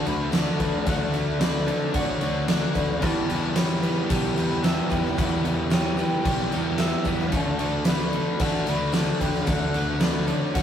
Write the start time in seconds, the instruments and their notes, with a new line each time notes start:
Already playing: overdriven electric guitar D3, clean electric guitar F#4 A4
0.05 picked electric bass D2, overdriven electric guitar D3 A3 D4 F#4, flute B5, tambourine, crash
0.32 overdriven electric guitar D3 A3 D4 F#4, clean electric guitar D5, flute A5, snare, tambourine, crash
0.59 picked electric bass D2, overdriven electric guitar D3 A3 D4, clean electric guitar B4, kick, tambourine, crash
0.86 picked electric bass D2, overdriven electric guitar D3 A3 D4 F#4, clean electric guitar A4, flute F#5, kick, tambourine, crash
1.12 overdriven electric guitar D3 A3 D4, flute E5, tambourine, crash
1.39 overdriven electric guitar D3 A3 D4 F#4, clean electric guitar B4, flute D5, snare, tambourine, crash
1.67 overdriven electric guitar D3 A3 D4, clean electric guitar A4, tambourine, crash
1.93 picked electric bass A1, overdriven electric guitar D3 A3 D4 F#4, clean electric guitar F#4, flute D5, kick, crash
2.04 flute C#5
2.21 picked electric bass D2, overdriven electric guitar D3 A3 D4 F#4, tambourine, crash
2.48 overdriven electric guitar D3 A3 D4 F#4, clean electric guitar D5, flute F#5, snare, tambourine, crash
2.74 picked electric bass D2, overdriven electric guitar D3 A3 D4, clean electric guitar B4, kick, tambourine, crash
3.01 overdriven electric guitar E2 B2 E3 G3 B3 G4, picked electric bass E2, clean electric guitar B4, flute A5, kick, tambourine, crash
3.29 overdriven electric guitar E2 B2 E3, tambourine, crash
3.55 overdriven electric guitar E2 B2 E3 G3 B3 G4, clean electric guitar C#5, flute B5, snare, tambourine, crash
3.83 overdriven electric guitar E2 B2 E3, clean electric guitar B4, tambourine, crash
4.08 picked electric bass B1, overdriven electric guitar E2 B2 E3 G3 B3 G4, clean electric guitar G4, flute A5, kick, crash
4.36 overdriven electric guitar E2 B2 E3 G3 B3 G4, picked electric bass E2, flute B5, tambourine, crash
4.63 overdriven electric guitar E2 B2 E3 G3 B3 G4, clean electric guitar E5, flute A5, snare, tambourine, crash
4.90 overdriven electric guitar E2 B2 E3, picked electric bass E2, clean electric guitar B4, flute G5, kick, tambourine, crash
5.05 snare
5.16 overdriven electric guitar E2 B2 E3 G3 B3 G4, picked electric bass E2, clean electric guitar B4, flute E5, kick, tambourine, crash
5.44 overdriven electric guitar E2 B2 E3, tambourine, crash
5.70 overdriven electric guitar E2 B2 E3 G3 B3 G4, clean electric guitar C#5, flute G5, snare, tambourine, crash
5.97 overdriven electric guitar E2 B2 E3, clean electric guitar B4, tambourine, crash
6.24 picked electric bass B1, overdriven electric guitar E2 B2 E3 G3 B3 G4, clean electric guitar G4, kick, crash
6.51 overdriven electric guitar E2 B2 E3 G3 B3 G4, picked electric bass E2, tambourine, crash
6.78 overdriven electric guitar E2 B2 E3 G3 B3 G4, clean electric guitar E5, snare, tambourine, crash
7.04 overdriven electric guitar E2 B2 E3, picked electric bass E2, clean electric guitar B4, kick, tambourine, crash
7.19 snare
7.32 picked electric bass D2, overdriven electric guitar D3 A3 D4 F#4, clean electric guitar A4, flute A5, kick, tambourine, crash
7.59 overdriven electric guitar D3 A3 D4, crash
7.84 overdriven electric guitar D3 A3 D4 F#4, clean electric guitar B4, flute B5, snare, tambourine, crash
8.13 overdriven electric guitar D3 A3 D4, clean electric guitar A4, crash
8.40 picked electric bass A1, overdriven electric guitar D3 A3 D4 F#4, clean electric guitar F#4, flute A5, kick, crash
8.66 picked electric bass D2, overdriven electric guitar D3 A3 D4 F#4, flute B5, tambourine, crash
8.92 overdriven electric guitar D3 A3 D4 F#4, clean electric guitar D5, flute A5, snare, tambourine, crash
9.19 picked electric bass D2, overdriven electric guitar D3 A3 D4, clean electric guitar B4, flute G5, kick, tambourine, crash
9.34 snare
9.46 picked electric bass D2, overdriven electric guitar D3 A3 D4 F#4, clean electric guitar A4, flute F#5, kick, tambourine, crash
9.73 overdriven electric guitar D3 A3 D4, tambourine, crash
10.00 overdriven electric guitar D3 A3 D4 F#4, clean electric guitar B4, flute D5, snare, tambourine, crash
10.27 overdriven electric guitar D3 A3 D4, clean electric guitar A4, flute C#5, tambourine, crash
10.54 picked electric bass A1, overdriven electric guitar D3 A3 D4 F#4, clean electric guitar F#4, kick, crash